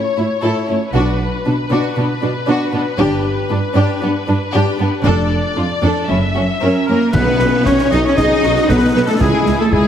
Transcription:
0.00 0.90 C#5 soft
0.17 0.25 A2 soft
0.17 0.25 E4 soft
0.17 0.26 E4 soft
0.42 0.51 A2 soft
0.42 0.67 E4 soft
0.42 0.66 A4 soft
0.68 0.77 A2 soft
0.68 0.76 C#4 soft
0.68 0.76 E4 soft
0.92 1.17 B1 soft
0.92 1.03 B2 soft
0.92 1.18 D4 soft
0.92 1.17 F#4 soft
0.92 5.00 B4 soft
1.45 1.54 B2 soft
1.45 1.53 D4 soft
1.45 1.54 D4 soft
1.71 1.79 B2 soft
1.71 1.95 D4 soft
1.71 1.95 F#4 soft
1.97 2.05 B2 soft
1.97 2.05 B3 soft
1.97 2.05 D4 soft
2.21 2.31 B2 soft
2.21 2.29 D4 soft
2.21 2.31 D4 soft
2.47 2.56 B2 medium
2.47 2.71 D4 soft
2.47 2.72 F#4 soft
2.73 2.81 B2 soft
2.73 2.81 B3 soft
2.73 2.82 D4 soft
2.98 3.22 G1 medium
2.98 3.07 G2 medium
2.98 3.23 D4 medium
2.98 3.23 G4 medium
3.50 3.58 G2 soft
3.50 3.58 D4 soft
3.50 3.59 D4 soft
3.76 3.84 G2 medium
3.76 4.00 D4 medium
3.76 4.00 G4 medium
4.02 4.10 G2 soft
4.02 4.10 B3 soft
4.02 4.10 D4 soft
4.28 4.36 G2 soft
4.28 4.36 D4 soft
4.28 4.37 D4 soft
4.53 4.62 G2 medium
4.53 4.77 D4 medium
4.53 4.77 G4 medium
4.78 4.87 G2 soft
4.78 4.88 B3 soft
4.78 4.86 D4 soft
5.03 5.28 F1 medium
5.03 5.13 F2 medium
5.03 5.28 D4 medium
5.03 5.29 A4 medium
5.03 6.07 D5 soft
5.56 5.65 F2 soft
5.56 5.64 D4 soft
5.56 5.65 F4 soft
5.82 5.91 F2 medium
5.82 6.07 D4 medium
5.82 6.07 A4 soft
6.08 6.33 F#1 soft
6.08 6.17 F#2 soft
6.08 6.17 C#4 soft
6.08 6.17 E4 soft
6.08 6.87 E5 soft
6.34 6.43 F#2 soft
6.34 6.44 C#4 soft
6.34 6.42 F#4 soft
6.60 6.70 F#2 soft
6.60 6.86 C#4 soft
6.60 6.85 A#4 soft
6.86 6.96 F#2 soft
6.86 7.00 A#3 soft
6.86 7.12 A#3 medium
6.86 6.97 C#4 soft
6.86 6.95 E4 soft
6.86 6.98 A#4 soft
6.86 7.15 A#4 medium
6.86 7.12 A#4 medium
6.86 7.12 A#4 soft
6.86 7.13 A#4 medium
7.13 7.24 B1 medium
7.13 7.22 B1 medium
7.13 7.88 B2 medium
7.13 7.65 B3 medium
7.13 7.68 B4 medium
7.13 7.65 B4 medium
7.13 concert bass drum medium
7.13 crash soft
7.13 tam-tam medium
7.39 7.50 B1 medium
7.39 7.48 B1 medium
7.39 snare medium
7.65 7.73 B1 medium
7.65 7.76 B1 medium
7.65 7.92 C#4 medium
7.65 7.91 C#5 medium
7.65 7.92 C#5 medium
7.65 7.90 C#5 medium
7.65 concert bass drum medium
7.65 snare medium
7.78 snare soft
7.91 7.99 B1 medium
7.91 8.02 B1 medium
7.91 8.05 D#4 medium
7.91 8.07 D#5 medium
7.91 8.04 D#5 medium
7.91 8.05 D#5 medium
7.91 8.04 D#5 medium
7.91 snare soft
8.03 8.18 C#4 medium
8.03 8.17 C#5 medium
8.03 8.16 C#5 medium
8.03 8.10 C#5 medium
8.03 8.17 C#5 medium
8.16 8.25 B1 medium
8.16 8.29 B1 medium
8.16 8.68 D#4 medium
8.16 8.69 D#4 loud
8.16 8.42 G#4 medium
8.16 8.67 D#5 medium
8.16 8.68 D#5 medium
8.16 8.70 D#5 medium
8.16 8.71 D#5 medium
8.16 8.68 D#5 medium
8.16 concert bass drum medium
8.16 snare medium
8.43 8.51 B1 medium
8.43 8.54 B1 medium
8.43 8.70 F#4 medium
8.43 snare medium
8.56 snare medium
8.67 8.76 B1 medium
8.67 8.80 B1 medium
8.67 8.94 B3 medium
8.67 8.95 B3 medium
8.67 9.20 D#4 medium
8.67 8.93 B4 medium
8.67 8.75 B4 medium
8.67 8.95 B4 medium
8.67 concert bass drum medium
8.67 snare medium
8.94 9.02 B1 medium
8.94 9.06 B1 medium
8.94 9.08 B3 medium
8.94 9.09 B3 medium
8.94 9.07 B4 medium
8.94 9.00 B4 medium
8.94 9.08 B4 medium
8.94 9.01 B4 medium
9.05 9.20 A3 medium
9.05 9.21 A3 medium
9.05 9.19 A4 medium
9.05 9.20 A4 medium
9.05 9.22 A4 medium
9.05 9.21 A4 medium
9.05 9.15 A4 medium
9.19 9.28 C#2 medium
9.19 9.31 C#2 medium
9.19 9.58 G#3 medium
9.19 9.59 G#3 medium
9.19 9.71 E4 medium
9.19 9.58 G#4 medium
9.19 9.59 G#4 medium
9.19 9.60 G#4 medium
9.19 concert bass drum medium
9.46 9.54 C#2 medium
9.46 9.58 C#2 medium
9.46 snare medium
9.58 9.73 A3 medium
9.58 9.72 A4 medium
9.58 9.74 A4 medium
9.58 9.65 A4 medium
9.58 9.74 A4 medium
9.58 9.72 A4 medium
9.71 9.80 C#2 medium
9.71 9.83 C#2 medium
9.71 9.88 G#3 medium
9.71 9.88 E4 medium
9.71 9.88 G#4 medium
9.71 concert bass drum medium

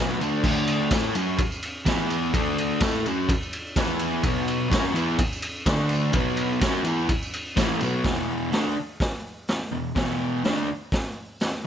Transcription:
0.00 0.20 B2 loud
0.00 0.20 F#3 loud
0.00 0.20 B3 loud
0.20 0.43 D3 medium
0.20 0.43 A3 loud
0.20 0.44 D4 loud
0.20 ride medium
0.20 tambourine medium
0.33 tambourine soft
0.44 0.91 D3 medium
0.44 0.91 A3 medium
0.44 0.91 D4 loud
0.44 kick loud
0.44 tambourine soft
0.44 crash loud
0.67 ride medium
0.67 tambourine medium
0.91 1.15 A3 medium
0.91 1.15 E4 medium
0.91 1.16 A4 medium
0.91 kick loud
0.91 snare loud
0.91 ride loud
0.91 tambourine loud
1.15 1.38 F#3 medium
1.15 1.39 C#4 loud
1.15 1.39 F#4 loud
1.15 ride medium
1.15 tambourine medium
1.38 muted distorted electric guitar stroke medium
1.38 kick loud
1.38 ride loud
1.38 tambourine soft
1.52 tambourine medium
1.62 ride medium
1.86 2.33 E3 medium
1.86 2.33 B3 loud
1.86 2.34 E4 loud
1.86 kick loud
1.86 snare loud
1.86 ride loud
1.86 tambourine loud
1.99 tambourine soft
2.10 ride medium
2.10 tambourine medium
2.23 tambourine soft
2.34 2.81 D3 medium
2.34 2.80 A3 loud
2.34 2.81 D4 loud
2.34 kick loud
2.34 ride loud
2.34 tambourine soft
2.58 ride medium
2.80 3.05 A3 medium
2.80 3.05 E4 medium
2.80 3.05 A4 medium
2.80 kick loud
2.80 snare loud
2.80 ride loud
2.80 tambourine loud
3.06 3.29 F#3 medium
3.06 3.29 C#4 loud
3.06 3.29 F#4 loud
3.06 ride medium
3.06 tambourine medium
3.29 muted distorted electric guitar stroke medium
3.29 kick loud
3.29 ride loud
3.29 tambourine soft
3.43 tambourine medium
3.53 ride medium
3.66 tambourine soft
3.76 4.23 E3 medium
3.76 4.23 B3 loud
3.76 4.24 E4 loud
3.76 kick loud
3.76 snare loud
3.76 ride loud
3.76 tambourine medium
3.99 ride medium
3.99 tambourine medium
4.13 tambourine soft
4.23 4.69 B2 medium
4.23 4.68 F#3 medium
4.23 4.71 B3 loud
4.23 kick loud
4.23 ride medium
4.23 tambourine soft
4.48 ride medium
4.48 tambourine medium
4.69 4.93 F#3 medium
4.69 4.93 C#4 medium
4.69 4.94 F#4 loud
4.69 kick loud
4.69 ride loud
4.69 tambourine medium
4.74 snare loud
4.93 5.18 E3 medium
4.93 5.18 B3 loud
4.93 5.18 E4 loud
4.93 ride medium
4.93 tambourine medium
5.18 muted distorted electric guitar stroke medium
5.18 kick loud
5.18 ride loud
5.18 tambourine soft
5.33 tambourine medium
5.42 ride medium
5.57 tambourine soft
5.66 6.13 D3 loud
5.66 6.13 A3 medium
5.66 6.13 D4 loud
5.66 kick loud
5.66 snare loud
5.66 ride loud
5.66 tambourine loud
5.81 tambourine soft
5.89 ride medium
5.89 tambourine medium
6.04 tambourine soft
6.13 6.60 B2 loud
6.13 6.60 F#3 loud
6.13 6.61 B3 loud
6.13 kick loud
6.13 ride loud
6.17 tambourine soft
6.29 tambourine soft
6.37 ride medium
6.53 tambourine soft
6.61 6.83 F#3 medium
6.61 6.84 C#4 loud
6.61 6.85 F#4 loud
6.61 kick loud
6.61 snare loud
6.61 ride medium
6.61 tambourine loud
6.75 tambourine soft
6.84 7.08 E3 loud
6.84 7.08 B3 loud
6.84 7.09 E4 loud
6.84 ride medium
6.84 tambourine medium
7.00 tambourine soft
7.09 muted distorted electric guitar stroke medium
7.09 kick loud
7.09 ride medium
7.23 tambourine medium
7.33 ride medium
7.33 tambourine soft
7.48 tambourine soft
7.56 7.80 A2 loud
7.56 7.80 E3 loud
7.56 7.81 A3 loud
7.56 kick loud
7.56 snare loud
7.56 ride loud
7.56 tambourine loud
7.71 tambourine soft
7.80 8.04 B2 medium
7.80 8.05 F#3 loud
7.80 8.05 B3 loud
7.80 ride medium
7.80 tambourine medium
8.04 8.52 E2 medium
8.04 8.51 B2 medium
8.04 8.52 E3 medium
8.04 kick loud
8.04 snare loud
8.04 open hi-hat medium
8.52 8.75 D3 medium
8.52 8.75 A3 loud
8.52 8.76 D4 medium
8.52 snare loud
8.52 open hi-hat medium
9.00 kick loud
9.00 snare loud
9.00 open hi-hat medium
9.48 snare loud
9.48 open hi-hat medium
9.72 9.91 E2 medium
9.72 9.91 B2 medium
9.95 10.43 E2 medium
9.95 10.43 B2 medium
9.95 10.43 E3 medium
9.95 kick loud
9.95 snare loud
9.95 open hi-hat medium
10.44 10.67 D3 medium
10.44 10.68 A3 medium
10.44 10.68 D4 medium
10.44 snare loud
10.44 open hi-hat soft
10.92 kick loud
10.92 snare loud
10.92 open hi-hat soft
11.40 snare loud
11.40 open hi-hat medium

